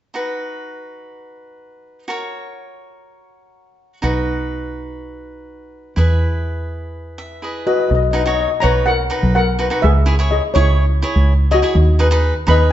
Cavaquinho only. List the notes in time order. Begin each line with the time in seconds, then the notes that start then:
0.14 D#4 F#4 B4
2.08 F#4 A#4 C#5
4.02 D#4 F#4 B4
5.96 E4 G#4 B4
7.18 E5
7.42 E4 G#4 B4 D#5
7.67 B4
8.13 D#4 F#4 B4
8.26 D#4 F#4 C#5
8.62 D#4 F#4 B4
9.10 D#4 F#4 B4
9.59 D#4 F#4 B4
9.70 D#4 F#4 B4
10.06 E4 G#4 C#5
10.19 E4 G#4 C#5
10.55 E4 G#4 C#5
11.02 E4 G#4 C#5
11.51 E4 G#4 C#5
11.62 E4 G#4 C#5
11.99 D#4 G#4 B4
12.11 D#4 G#4 B4
12.47 D#4 G#4 B4